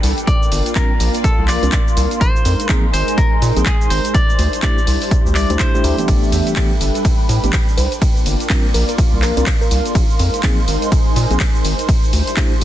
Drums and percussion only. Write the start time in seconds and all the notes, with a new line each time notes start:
0.03 open hi-hat, cabasa
0.18 closed hi-hat, cabasa
0.27 kick, closed hi-hat, cabasa
0.43 cabasa
0.52 open hi-hat, cabasa
0.66 closed hi-hat, cabasa
0.75 kick, clap, closed hi-hat, cabasa
1.00 open hi-hat, cabasa
1.15 closed hi-hat, cabasa
1.24 kick, closed hi-hat, cabasa
1.48 clap, open hi-hat, cabasa
1.63 closed hi-hat, cabasa
1.72 kick, clap, closed hi-hat, cabasa
1.88 cabasa
1.97 open hi-hat, cabasa
2.11 closed hi-hat, cabasa
2.21 kick, closed hi-hat, cabasa
2.36 cabasa
2.45 open hi-hat, cabasa
2.60 closed hi-hat, cabasa
2.69 kick, clap, closed hi-hat, cabasa
2.94 open hi-hat, cabasa
3.08 closed hi-hat, cabasa
3.18 kick, closed hi-hat, cabasa
3.42 open hi-hat, cabasa
3.56 closed hi-hat, cabasa
3.66 kick, clap, closed hi-hat, cabasa
3.81 cabasa
3.90 open hi-hat, cabasa
4.05 closed hi-hat, cabasa
4.14 kick, closed hi-hat, cabasa
4.30 cabasa
4.39 open hi-hat, cabasa
4.53 closed hi-hat, cabasa
4.62 kick, clap, closed hi-hat, cabasa
4.78 cabasa
4.87 open hi-hat, cabasa
5.02 open hi-hat, cabasa
5.11 kick, closed hi-hat, cabasa
5.26 cabasa
5.35 clap, open hi-hat, cabasa
5.50 closed hi-hat, cabasa
5.59 kick, clap, closed hi-hat, cabasa
5.75 cabasa
5.84 open hi-hat, cabasa
5.98 closed hi-hat, cabasa
6.08 kick, closed hi-hat, ride, cabasa
6.23 cabasa
6.32 open hi-hat, cabasa
6.47 closed hi-hat, cabasa
6.56 kick, clap, closed hi-hat, ride, cabasa
6.81 open hi-hat, cabasa
6.95 closed hi-hat, cabasa
7.05 kick, closed hi-hat, ride, cabasa
7.29 open hi-hat, cabasa
7.44 closed hi-hat, cabasa
7.53 kick, clap, closed hi-hat, ride, cabasa
7.68 cabasa
7.78 open hi-hat, cabasa
7.92 closed hi-hat, cabasa
8.02 kick, closed hi-hat, ride, cabasa
8.17 cabasa
8.26 open hi-hat, cabasa
8.40 closed hi-hat, cabasa
8.50 kick, clap, closed hi-hat, ride, cabasa
8.74 open hi-hat, cabasa
8.89 closed hi-hat, cabasa
8.98 kick, closed hi-hat, ride, cabasa
9.22 clap, open hi-hat, cabasa
9.37 closed hi-hat, cabasa
9.46 kick, clap, closed hi-hat, ride, cabasa
9.62 cabasa
9.71 open hi-hat, cabasa
9.86 closed hi-hat, cabasa
9.95 kick, closed hi-hat, ride, cabasa
10.10 cabasa
10.19 open hi-hat, cabasa
10.34 closed hi-hat, cabasa
10.43 kick, clap, closed hi-hat, ride, cabasa
10.68 open hi-hat, cabasa
10.82 closed hi-hat, cabasa
10.92 kick, closed hi-hat, ride, cabasa
11.16 open hi-hat, cabasa
11.31 closed hi-hat, cabasa
11.40 kick, clap, closed hi-hat, ride, cabasa
11.55 cabasa
11.65 open hi-hat, cabasa
11.79 closed hi-hat, cabasa
11.89 kick, closed hi-hat, ride, cabasa
12.04 cabasa
12.13 open hi-hat, cabasa
12.27 closed hi-hat, cabasa
12.37 kick, clap, closed hi-hat, ride, cabasa